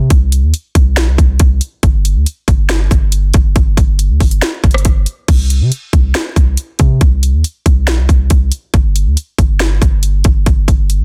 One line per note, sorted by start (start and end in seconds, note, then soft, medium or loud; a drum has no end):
0.10 0.44 C2 loud
0.10 kick loud
0.10 closed hi-hat medium
0.32 closed hi-hat medium
0.43 0.53 D#2 loud
0.54 closed hi-hat medium
0.75 0.98 C2 loud
0.75 kick medium
0.75 closed hi-hat medium
0.97 1.09 A#1 loud
0.97 snare loud
0.97 closed hi-hat medium
1.08 1.18 C2 loud
1.18 1.39 C2 loud
1.18 kick loud
1.18 closed hi-hat medium
1.39 1.61 C2 loud
1.39 kick loud
1.39 closed hi-hat loud
1.61 closed hi-hat medium
1.83 2.17 G1 loud
1.83 kick loud
1.83 closed hi-hat medium
2.05 closed hi-hat medium
2.15 2.26 D2 loud
2.26 closed hi-hat medium
2.48 2.89 G1 loud
2.48 kick loud
2.48 closed hi-hat medium
2.69 snare loud
2.69 closed hi-hat medium
2.91 3.32 G1 loud
2.91 kick loud
2.91 closed hi-hat medium
3.12 closed hi-hat loud
3.34 3.55 G1 loud
3.34 kick loud
3.34 closed hi-hat medium
3.56 3.76 G1 loud
3.56 kick loud
3.56 closed hi-hat medium
3.77 4.11 G1 loud
3.77 kick loud
3.77 closed hi-hat medium
3.99 closed hi-hat medium
4.10 4.20 D2 loud
4.20 4.41 G1 loud
4.20 kick medium
4.20 closed hi-hat medium
4.20 open hi-hat medium
4.31 closed hi-hat medium
4.42 snare loud
4.42 closed hi-hat medium
4.64 4.84 G1 loud
4.64 kick loud
4.64 closed hi-hat soft
4.71 cross-stick loud
4.71 closed hi-hat medium
4.78 closed hi-hat medium
4.85 5.06 G1 loud
4.85 kick loud
4.85 closed hi-hat loud
5.06 closed hi-hat medium
5.28 5.62 C2 loud
5.28 kick loud
5.28 closed hi-hat medium
5.28 crash loud
5.50 closed hi-hat medium
5.61 5.71 C3 loud
5.72 closed hi-hat medium
5.93 6.14 C2 loud
5.93 kick medium
5.93 closed hi-hat medium
6.15 snare loud
6.15 closed hi-hat medium
6.36 6.57 C2 loud
6.36 kick loud
6.36 closed hi-hat medium
6.57 closed hi-hat loud
6.79 7.00 C3 loud
6.79 kick loud
6.79 closed hi-hat medium
7.01 7.35 C2 loud
7.01 kick loud
7.01 closed hi-hat medium
7.23 closed hi-hat medium
7.33 7.44 D#2 loud
7.44 closed hi-hat medium
7.66 7.89 C2 loud
7.66 kick medium
7.66 closed hi-hat medium
7.87 8.00 A#1 loud
7.87 snare loud
7.87 closed hi-hat medium
7.98 8.08 C2 loud
8.09 8.30 C2 loud
8.09 kick loud
8.09 closed hi-hat medium
8.30 8.51 C2 loud
8.30 kick medium
8.30 closed hi-hat loud
8.52 closed hi-hat medium
8.74 9.08 G1 loud
8.74 kick loud
8.74 closed hi-hat medium
8.96 closed hi-hat medium
9.06 9.16 D2 loud
9.17 closed hi-hat medium
9.38 9.80 G1 loud
9.38 kick medium
9.38 closed hi-hat medium
9.60 snare loud
9.60 closed hi-hat medium
9.82 10.23 G1 loud
9.82 kick loud
9.82 closed hi-hat medium
10.03 closed hi-hat medium
10.24 10.46 G1 loud
10.24 kick loud
10.24 closed hi-hat medium
10.46 10.67 G1 loud
10.46 kick loud
10.46 closed hi-hat medium
10.68 11.02 G1 loud
10.68 kick loud
10.68 closed hi-hat medium
10.90 closed hi-hat medium
11.00 11.04 D2 loud